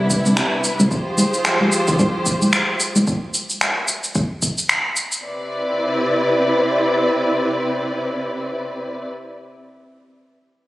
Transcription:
Already playing: C2 C3 G3 B3 D4 E4
0.10 kick, shaker
0.25 C2, high conga, shaker
0.37 finger snap, shaker
0.64 shaker
0.80 C2, high conga, shaker
0.91 F3 F4 G4 G#4 C5, kick, shaker
1.18 high conga, shaker
1.34 shaker
1.45 finger snap, shaker
1.61 high conga
1.72 shaker
1.88 kick, low conga, shaker
1.99 kick, high conga, shaker
2.26 kick, shaker
2.42 high conga, shaker
2.53 finger snap, shaker
2.80 shaker
2.96 high conga, shaker
3.07 kick, shaker
3.34 shaker
3.50 shaker
3.61 finger snap, shaker
3.88 shaker
4.04 shaker
4.15 kick, shaker
4.42 kick, shaker
4.58 shaker
4.69 finger snap, shaker
4.96 shaker
5.12 shaker
5.23 C3 C4 E4 B4 D5

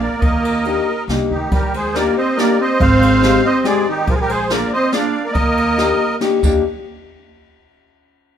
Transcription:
Already playing: A#3
0.00 A#4 D5
0.17 A#3 D#5
0.22 D#2 A#4, kick, ride
0.45 ride
0.65 A#3 D4 D#4 G4, ride
1.08 C2 A#3 D4 D#4 G4, snare, ride
1.28 D2 D#3 D#4 G4
1.50 D#2 G3 G4 A#4, kick, ride
1.74 G#3 G#4 C5, ride
1.94 A#3 D4 D#4 G4 A#4 D5, snare, ride
2.17 C4 C5 D#5
2.36 A#3 D4 D#4 G4 A#4 D5, snare, ride
2.60 C4 C5 D#5
2.80 G#1 C4 C5 F5, kick, ride
3.02 ride
3.22 G#3 C4 D#4 G4, snare, ride
3.45 C4 C5 D#5
3.64 G#3 C4 D#4 G4 G#4 D5, snare, ride
3.68 G#3
3.88 D#3 D#4 G4
4.07 A#1 F3 F4 A#4, kick, ride
4.13 F3 G#4
4.19 G3 G4 A#4
4.29 G#3 G#4 C5, ride
4.50 A#3 D4 F4 G#4 A#4 D5, snare, ride
4.72 C4 C5 D#5
4.92 A#3 D4 F4 G#4 D5 F5, snare, ride
4.96 D4
5.24 A#4 D5
5.30 A#3 A#4 D#5
5.34 D#2 A#3, kick, ride
5.58 ride
5.78 A#3 D4 D#4 G4, snare, ride
6.21 A#3 D4 D#4 G4, snare, ride
6.43 D#2 A#3 D4 D#4 G4, kick, crash

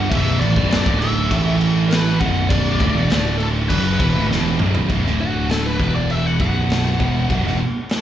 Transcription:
Already playing: G2 D3 G3 F#5
0.09 B0 B1 F#2 B2 E5, kick, crash
0.39 A1 A2 E3 D5, crash
0.43 A2
0.54 B0 B1 F#2 B2, kick
0.59 B2
0.70 D5, snare, crash
0.85 D1 D2 A2 D3, kick
1.00 E5, crash
1.31 A1 A2 E3 A3, kick, crash
1.61 crash
1.89 B4, snare, crash
2.20 B0 B1 F#2 B2 F#5, kick, crash
2.49 D5, kick, crash
2.79 D1 D2 A2, kick, crash
2.95 E1 E2 B2
3.09 D1 D2 A2 D3, snare, crash
3.38 A4, crash
3.69 F#1 F#2 C#3 F#3 B4, kick, crash
3.99 E1 E2 B2, kick, crash
4.13 D1 D2 A2
4.29 E1 E2 B2 E3, snare
4.59 B0 B1 F#2 B2, mid tom
4.75 floor tom
4.88 B0 B1 F#2, kick, crash
5.03 D1 D2 A2 D3, snare
5.21 F#4
5.49 A4, snare, crash
5.67 B4
5.79 E1 E2 B2 E3, kick
5.95 D5
6.10 E5, crash
6.26 F#5
6.39 B0 B1 F#2 B2 F#5, kick
6.70 snare, crash
6.99 E1 E2 B2 E3, kick
7.28 B0 B1 F#2, kick, crash
7.43 E1 E2 B2, snare
7.89 snare, crash

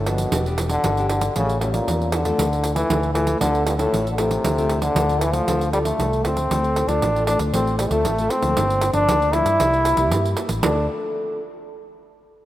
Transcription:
Already playing: G1 D3
0.06 B2 F3 A#3 D4, pandeiro
0.18 pandeiro
0.31 E1 E3 B3 D4 G4, pandeiro
0.46 B3 D4 G4, pandeiro
0.58 pandeiro
0.69 D3, pandeiro
0.84 G1 B2, pandeiro
0.97 B3 D4 G4, pandeiro
1.09 D3, pandeiro
1.21 pandeiro
1.36 A1 A2 C#3 G3 C#4 E4, pandeiro
1.49 pandeiro
1.61 A2 G3 C#4 E4, pandeiro
1.73 A#2, pandeiro
1.87 E2 E3, pandeiro
2.02 pandeiro
2.12 D3 G3 C#4 E4, pandeiro
2.25 A3 C4 F4, pandeiro
2.38 D2 D3, pandeiro
2.53 pandeiro
2.64 pandeiro
2.75 E3 A3 C4, pandeiro
2.90 D2 A2, pandeiro
3.03 pandeiro
3.14 E3 A3 C4 F4, pandeiro
3.27 pandeiro
3.40 D2 D3 A3 C4 F4, pandeiro
3.55 pandeiro
3.65 G2, pandeiro
3.78 A2 A3 C4 F4, pandeiro
3.93 A1 A2, pandeiro
4.07 pandeiro
4.11 D3
4.18 C3 A3 C4 F4, pandeiro
4.31 pandeiro
4.44 D2 D3, pandeiro
4.57 A3 C4 F4, pandeiro
4.69 pandeiro
4.82 D3, pandeiro
4.95 D2 A2 A3 C4 F4, pandeiro
5.09 A3 C4 F4, pandeiro
5.21 E3, pandeiro
5.33 F3, pandeiro
5.47 D2 D3 A3 C4 F4, pandeiro
5.61 pandeiro
5.72 G3 A3 C4 F4, pandeiro
5.85 A3, pandeiro
5.99 C2 A2, pandeiro
6.13 pandeiro
6.24 D2 A3 C4 F4, pandeiro
6.37 pandeiro
6.51 D2 D3 A3 C4 F4, pandeiro
6.64 pandeiro
6.76 pandeiro
6.87 D2 A3 C4 D4 F4, pandeiro
7.02 A1 A2, pandeiro
7.15 A3 C4 F4, pandeiro
7.27 D4, pandeiro
7.39 D2, pandeiro
7.53 A1 D3 A3 C4 F4, pandeiro
7.67 pandeiro
7.78 G3, pandeiro
7.90 D2 A3 C4 F4, pandeiro
8.05 A1 A2, pandeiro
8.18 A3 C4 F4, pandeiro
8.30 C4, pandeiro
8.42 D2 F3 A#3 D4, pandeiro
8.57 G1 G2, pandeiro
8.70 pandeiro
8.81 pandeiro
8.93 G1 F3 A#3 D4, pandeiro
9.08 D2 D3, pandeiro
9.22 pandeiro
9.33 F3 A#3 D4 E4, pandeiro
9.45 G2, pandeiro
9.60 C2 C3 G3 A#3 E4, pandeiro
9.73 pandeiro
9.85 pandeiro
9.97 C2 G3 A#3 E4, pandeiro
10.11 G2, pandeiro
10.26 pandeiro
10.37 G3 A#3 E4, pandeiro
10.49 A1, pandeiro
10.62 D2 D3 A3 C4 D4 F4, pandeiro

